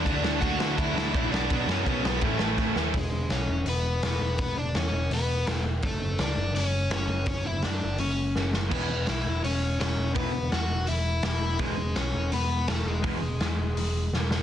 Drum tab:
CC |--------|--------|--------|--------|
RD |x-x-x-x-|x-x-x---|--------|--------|
HH |--------|--------|o-o-o-o-|o-o-o-o-|
SD |-o-o-o-o|-o-o-ooo|--o---o-|--o---o-|
BD |o-o-o-o-|o-o-o-o-|o-------|o-------|

CC |--------|--------|x-------|--------|
RD |--------|--------|--------|--------|
HH |o-o-o-o-|o-o-o---|--o-o-o-|o-o-o-o-|
SD |--o---o-|--o---oo|--o---o-|--o---o-|
BD |o-------|o-------|o-------|o-------|

CC |--------|--------|
RD |--------|--------|
HH |o-o-o-o-|o-o-o---|
SD |--o---o-|--o---oo|
BD |o-------|o-------|